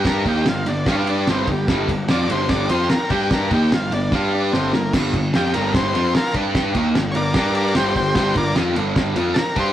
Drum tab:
CC |--------|--------|--------|x-------|
RD |xxxxxxxx|xxxxxxxx|xxxx----|-xxxxxxx|
SD |o-o-o-o-|o-o-o-o-|o-o-o-oo|o-o-o-o-|
BD |oo--o--o|oo--o--o|oo--o---|oo--o--o|

CC |--------|--------|
RD |xxxxxxxx|xxxxxxxx|
SD |o-o-o-o-|o-o-o-o-|
BD |oo--o--o|oo--o--o|